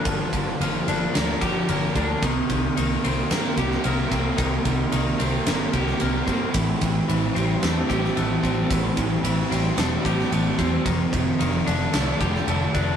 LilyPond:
<<
  \new Staff \with { instrumentName = "Clean electric guitar" } { \time 4/4 \key c \dorian \tempo 4 = 111 <f bes d' g'>4 f8 d'8 bes8 g'8 bes8 d'8 | ees4 ees8 c'8 bes8 g'8 bes8 c'8 | ees4 ees8 c'8 bes8 g'8 bes8 c'8 | e4 e8 c'8 a8 g'8 a8 c'8 |
e4 e8 c'8 a8 g'8 a8 c'8 | ees4 ees8 d'8 a8 g'8 a8 d'8 | }
  \new Staff \with { instrumentName = "Overdriven electric guitar" } { \time 4/4 \key c \dorian <g, bes d' g'>8 d8 f8 bes8 d'8 g'8 d'8 bes8 | c8 ees8 ees8 bes8 c'8 g'8 c'8 bes8 | c8 ees8 ees8 bes8 c'8 g'8 c'8 bes8 | a,8 e8 e8 g8 c'8 g'8 c'8 g8 |
a,8 e8 e8 g8 c'8 g'8 c'8 g8 | f,8 c8 ees8 a8 d'8 f'8 d'8 a8 | }
  \new Staff \with { instrumentName = "Overdriven electric guitar" } { \clef bass \time 4/4 \key c \dorian <g, d f bes>8 d8 bes8 f8 bes8 f8 d8 bes8 | c8 c8 bes8 g8 bes8 g8 c8 bes8 | c8 c8 bes8 g8 bes8 g8 c8 bes8 | a,8 e8 c'8 g8 c'8 g8 e8 c'8 |
a,8 e8 c'8 g8 c'8 g8 e8 c'8 | f,8 ees8 d'8 a8 d'8 a8 ees8 d'8 | }
  \new Staff \with { instrumentName = "Picked electric bass" } { \clef bass \time 4/4 \key c \dorian g,,8 g,,8 g,,8 g,,8 d,8 g,,8 g,,8 d,8 | c,8 c,8 c,8 c,8 g,8 c,8 c,8 c,8 | c,8 c,8 c,8 c,8 g,,8 c,8 c,8 g,8 | a,,8 a,,8 a,,8 a,,8 e,8 a,,8 a,,8 a,,8 |
a,,8 a,,8 a,,8 a,,8 e,,8 a,,8 a,,8 e,8 | f,,8 f,,8 f,,8 f,,8 c,8 f,,8 f,,8 f,,8 | }
  \new DrumStaff \with { instrumentName = "Drums" } \drummode { \time 4/4 <bd cymr>8 <bd cymr>8 cymr8 cymr8 <cymr sn>8 <bd cymr>8 cymr8 <bd cymr>8 | <bd cymr>8 <bd cymr>8 cymr8 cymr8 <cymr sn>8 <bd cymr>16 sn16 cymr8 <bd cymr>8 | <bd cymr>8 <bd cymr>8 cymr8 cymr8 <cymr sn>8 <bd cymr>16 sn16 cymr8 <bd cymr>8 | <bd cymr>8 <bd cymr>8 cymr8 cymr8 <cymr sn>8 <bd cymr>16 sn16 cymr8 <bd cymr>8 |
<bd cymr>8 <bd cymr>8 cymr8 cymr8 <cymr sn>8 <bd cymr>16 sn16 cymr8 <bd cymr>8 | <bd cymr>8 <bd cymr>8 cymr8 cymr8 <cymr sn>8 <bd cymr>16 sn16 cymr8 <bd cymr>8 | }
>>